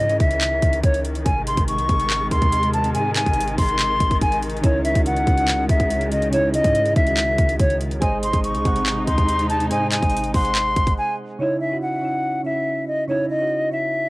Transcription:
Already playing: 808-style bass G#2, string section C#3 D#3 E3, flute D#5
0.09 closed hi-hat
0.20 808-style bass C#2, flute E5, kick, closed hi-hat
0.31 closed hi-hat
0.41 clap, closed hi-hat
0.62 808-style bass C#2, kick, closed hi-hat
0.73 closed hi-hat
0.83 808-style bass C#2, flute C#5, kick, closed hi-hat
0.94 closed hi-hat
1.05 closed hi-hat
1.15 closed hi-hat
1.25 808-style bass G#1, string section C3 G#3, flute G#5, kick, closed hi-hat
1.47 flute C6, closed hi-hat
1.57 808-style bass G#1, kick, closed hi-hat
1.68 flute C#6, closed hi-hat
1.78 808-style bass C2, closed hi-hat
1.89 808-style bass G#1, kick, closed hi-hat
2.00 closed hi-hat
2.10 clap, closed hi-hat
2.31 808-style bass D#2, flute C6, kick, closed hi-hat
2.42 kick, closed hi-hat
2.52 closed hi-hat
2.63 closed hi-hat
2.73 flute A5, closed hi-hat
2.84 closed hi-hat
2.95 808-style bass G#2, flute G#5, closed hi-hat
3.16 flute G#5, clap, closed hi-hat
3.26 808-style bass G#1, kick, closed hi-hat
3.33 closed hi-hat
3.41 closed hi-hat
3.48 closed hi-hat
3.58 808-style bass G#1, flute C6, kick, open hi-hat
3.69 closed hi-hat
3.79 clap, closed hi-hat
4.00 808-style bass G#1, kick, closed hi-hat
4.11 kick, closed hi-hat
4.21 flute G#5, kick, closed hi-hat
4.32 808-style bass A1, closed hi-hat
4.43 closed hi-hat
4.50 closed hi-hat
4.57 closed hi-hat
4.62 808-style bass C#2, synth keys C#3 C#4 D#4 E4, string section C#3 G#3, flute C#5, kick, closed hi-hat
4.85 flute E5, closed hi-hat
4.94 808-style bass C#2, synth keys C#3 C#4 D#4 F#4, kick, closed hi-hat
5.06 flute F#5, closed hi-hat
5.16 closed hi-hat
5.26 808-style bass C#2, synth keys C#3 C#4 D#4 F#4, kick, closed hi-hat
5.38 closed hi-hat
5.48 clap, closed hi-hat
5.69 808-style bass C#2, flute E5, kick, closed hi-hat
5.80 kick, closed hi-hat
5.90 closed hi-hat
6.01 closed hi-hat
6.12 flute D#5, closed hi-hat
6.22 closed hi-hat
6.31 synth keys C#3 C#4 D#4 E4, flute C#5, closed hi-hat
6.54 flute D#5, closed hi-hat
6.63 808-style bass G#2, synth keys C#3 C#4 D#4 E4, kick, closed hi-hat
6.75 closed hi-hat
6.86 closed hi-hat
6.94 808-style bass C#2, synth keys C#3 C#4 D#4 E4, flute E5, kick, closed hi-hat
7.05 synth keys C#3 D#3 C#4 F#4, closed hi-hat
7.17 clap, closed hi-hat
7.38 808-style bass C#2, kick, closed hi-hat
7.49 closed hi-hat
7.59 808-style bass C#2, flute C#5, kick, closed hi-hat
7.70 closed hi-hat
7.81 closed hi-hat
7.91 closed hi-hat
7.99 808-style bass G#1, string section C3 G#3 D#4, synth keys G#3 G#4 C5 D#5, flute G#5, kick, closed hi-hat
8.23 flute C6, closed hi-hat
8.32 808-style bass G#1, synth keys G#3 G#4 C5 D#5, kick, closed hi-hat
8.44 flute C#6, closed hi-hat
8.55 808-style bass C2, closed hi-hat
8.64 808-style bass G#1, synth keys G#3 C4 G#4 F#5, kick, closed hi-hat
8.76 closed hi-hat
8.86 clap, closed hi-hat
9.07 808-style bass D#2, flute C6, kick, closed hi-hat
9.18 kick, closed hi-hat
9.29 closed hi-hat
9.39 closed hi-hat
9.49 flute A5, closed hi-hat
9.60 closed hi-hat
9.69 808-style bass G#2, synth keys G#3 G#4 C5 D#5, flute G#5, closed hi-hat
9.92 flute G#5, clap, closed hi-hat
10.00 808-style bass G#1, synth keys G#3 G#4 C5 D#5, kick, closed hi-hat
10.10 closed hi-hat
10.17 closed hi-hat
10.24 closed hi-hat
10.33 808-style bass G#1, synth keys G#3 G#4 C5 F#5, flute C6, kick, open hi-hat
10.43 synth keys G#3 G#4 C5 F#5, closed hi-hat
10.55 clap, closed hi-hat
10.76 808-style bass G#1, kick, closed hi-hat
10.87 kick, closed hi-hat
10.98 flute G#5
11.39 synth keys C#3 C#4 D#4 E4, flute C#5
11.61 flute E5
11.70 synth keys C#3 C#4 D#4 F#4
11.82 flute F#5
12.02 synth keys C#3 C#4 D#4 E4
12.43 synth keys C#3 C#4 E4, flute E5
12.88 flute D#5
13.08 synth keys C#3 C#4 D#4 E4, flute C#5
13.30 flute D#5
13.39 synth keys C#3 C#4 D#4 F#4
13.70 synth keys C#3 C#4 E4, flute E5

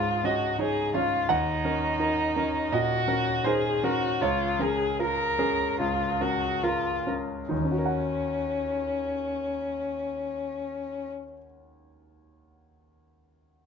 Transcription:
Already playing: grand piano C#2 G#2 C#4 D#4 G#4 C#5, violin F4
0.24 grand piano C#4 C#5 D#5, violin F#4
0.59 grand piano D#4 C#5, violin G#4
0.94 grand piano C#4 C#5 F5, violin F4
1.29 grand piano D#2 F#5, violin D#4
1.65 grand piano C#4 A#4
1.99 grand piano D#4 A#4
2.36 grand piano C#4 A#4
2.72 grand piano A#2 D#5, violin F#4
3.08 grand piano C#4 A#4
3.44 grand piano D#4 A#4 C5, violin G#4
3.83 grand piano C#4 A#4, violin F#4
4.21 grand piano C#2 C#5, violin F4
4.59 grand piano C#4 A#4, violin G#4
4.99 grand piano F4 A#4, violin A#4
5.39 grand piano C#4 G#4 A#4
5.80 grand piano C#2, violin F4
6.21 grand piano C#4 A#4, violin F#4
6.64 grand piano F4 A#4, violin F4
7.07 grand piano C#4 A#4
7.49 grand piano D#2 D#4, violin C#4
7.58 grand piano D#3
7.65 grand piano C#4
7.72 grand piano F#4
7.79 grand piano A#4
7.86 grand piano F#5

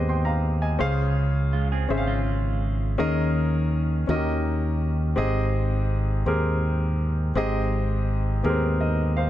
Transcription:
Already playing: fingered electric bass D#2, grand piano G#2 B3 C4 G4 G#4 D#5
0.09 grand piano G5 C6
0.25 grand piano F5 A#5
0.62 grand piano D#5 G#5
0.79 fingered electric bass C#2, grand piano C#3 C#4 G#4 C5 F5
1.53 clean electric guitar G#3 F4
1.72 clean electric guitar C4 G#4
1.89 fingered electric bass G#1, grand piano C#4 G#4 C5 E5
1.98 grand piano F5
2.07 clean electric guitar G#3 F4
2.98 fingered electric bass D#2, grand piano D#3 C#4 G#4 A#4 D#5
4.07 fingered electric bass D#2, grand piano D#3 C#4 F#4 A#4 D#5
4.14 grand piano G4
5.16 fingered electric bass G#1, grand piano G#2 C4 G4 G#4 D#5
6.26 fingered electric bass D#2, grand piano C4 G4 G#4 A#4
7.35 fingered electric bass G#1, grand piano G#2 C4 G4 G#4 D#5
8.43 fingered electric bass D#2, grand piano B3 G4 G#4 A#4
8.49 grand piano C4
8.81 grand piano A#4 D#5
9.17 grand piano C5 F5

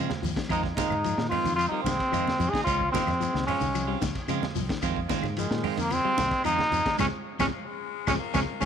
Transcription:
Already playing: clean electric guitar F3 G#3 C4 F4
0.08 muted fingered electric bass stroke, snare, high conga
0.22 fingered electric bass D#2, clean electric guitar F3, open hi-hat, low conga, shekere
0.36 clean electric guitar D#3, kick, snare, ride bell, shekere
0.49 fingered electric bass F2, clean electric guitar D#3 G#3 C4 F4, tenor saxophone G#3, trombone D#4, kick, ride bell, claves, shekere
0.63 kick, snare
0.76 clean electric guitar D#3 G#3 C4 F4, tenor saxophone G#3, trombone D#4, muted clean electric guitar stroke, kick, snare, ride bell, high conga, shekere
0.90 fingered electric bass G#2, high conga, claves, shekere
1.04 clean electric guitar F3, ride bell, shekere
1.18 fingered electric bass A#2, clean electric guitar D#3, snare
1.29 clean electric guitar D#3 G#3 C4 F4, tenor saxophone C4, trombone F4, open hi-hat, low conga, claves, shekere
1.44 fingered electric bass F2, clean electric guitar D#3, ride bell, high conga, shekere
1.56 clean electric guitar F3, tenor saxophone C4, trombone F4, ride bell, claves
1.60 shekere
1.68 clean electric guitar G3 F4, trombone D#4, muted fingered electric bass stroke
1.72 tenor saxophone A#3, clean electric guitar C4, muted clean electric guitar stroke
1.83 fingered electric bass C2, clean electric guitar D#3, tenor saxophone G#3, trombone C4, snare, ride bell, high conga, shekere
1.99 kick, snare, ride bell, shekere
2.12 fingered electric bass F2, clean electric guitar D#3 F3 G#3 C4 F4, ride bell, claves, shekere
2.28 snare, high conga
2.39 fingered electric bass F2, clean electric guitar F3, ride bell, low conga, shekere
2.50 clean electric guitar D#3, tenor saxophone D#4, trombone G#4, kick
2.55 snare, ride bell, shekere
2.64 fingered electric bass C#2, clean electric guitar G#3 C4 F4, tenor saxophone C#4, trombone F4, kick, snare, ride bell, claves, shekere
2.80 kick
2.92 clean electric guitar D#3 G#3 C4 F4, tenor saxophone G#3, trombone C4, kick, snare, ride bell, high conga, shekere
3.07 fingered electric bass F2, snare, high conga, low conga, claves, shekere
3.20 clean electric guitar F3, ride bell, shekere
3.34 fingered electric bass C#2, clean electric guitar D#3, snare
3.46 tenor saxophone G#3, clean electric guitar G#3 C4 F4, trombone C#4, open hi-hat, low conga, claves, shekere
3.61 fingered electric bass C2, clean electric guitar D#3, high conga, shekere
3.75 clean electric guitar F3, ride bell, claves, shekere
3.87 clean electric guitar G3 C4 F4
4.01 fingered electric bass C#2, clean electric guitar D#3, kick, snare, ride bell, high conga, shekere
4.15 kick, snare, ride bell, shekere
4.28 fingered electric bass C#3, clean electric guitar F3 G#3 C4 F4, ride bell, claves, shekere
4.41 muted fingered electric bass stroke, snare, high conga
4.55 fingered electric bass C2, clean electric guitar F3, open hi-hat, high conga, low conga, shekere
4.69 clean electric guitar D#3, kick, snare, ride bell, shekere
4.82 fingered electric bass F2, clean electric guitar D#3 G#3 C4 F4, kick, ride bell, claves, shekere
4.96 kick
5.09 clean electric guitar D#3 G#3 C4 F4, kick, snare, ride bell, high conga, shekere
5.23 fingered electric bass G#2, snare, high conga, claves, shekere
5.37 tenor saxophone D#3, clean electric guitar F3, trombone G#3, ride bell, shekere
5.51 fingered electric bass A#2, clean electric guitar D#3, snare
5.63 clean electric guitar D#3 G#3 C4 F4, muted fingered electric bass stroke, open hi-hat, low conga, claves, shekere
5.77 fingered electric bass F2, clean electric guitar D#3, tenor saxophone F3, trombone A#3, ride bell, high conga, shekere
5.91 clean electric guitar F3, tenor saxophone G#3, trombone C4, ride bell, high conga, claves, shekere
6.04 clean electric guitar G3 G#3 C4 F4, muted fingered electric bass stroke
6.17 fingered electric bass C2, clean electric guitar D#3, snare, ride bell, high conga, shekere
6.31 muted fingered electric bass stroke, kick, snare, ride bell, shekere
6.44 fingered electric bass F2, clean electric guitar D#3 F3 G#3 C4 F4, tenor saxophone G#3, trombone D#4, ride bell, claves, shekere
6.59 snare, high conga
6.71 fingered electric bass F2, clean electric guitar F3, ride bell, low conga, shekere
6.85 clean electric guitar D#3, muted fingered electric bass stroke, kick, snare, ride bell, shekere
6.98 fingered electric bass C#2, clean electric guitar C#3 F3 G#3 C4 C#4, tenor saxophone G#3, trombone C#4, kick, snare, low conga, claves, shekere
7.39 fingered electric bass C#2, clean electric guitar C#3 F3 G#3 C4 C#4, tenor saxophone G#3, trombone C#4, kick, snare, low conga, claves, shekere
7.52 baritone saxophone F3
7.65 baritone saxophone G#3
8.07 fingered electric bass C#2, clean electric guitar C#3 F3 G#3 C4 C#4, tenor saxophone G#3, trombone C#4, kick, snare, low conga, claves, shekere
8.19 baritone saxophone A#3
8.34 fingered electric bass C#2, clean electric guitar C#3 F3 G#3 C4 C#4, tenor saxophone G#3, trombone C#4, kick, snare, low conga, claves, shekere
8.60 fingered electric bass C#2, clean electric guitar C#3 F3 G#3 C4 C#4, trombone C#4, kick, claves, shekere

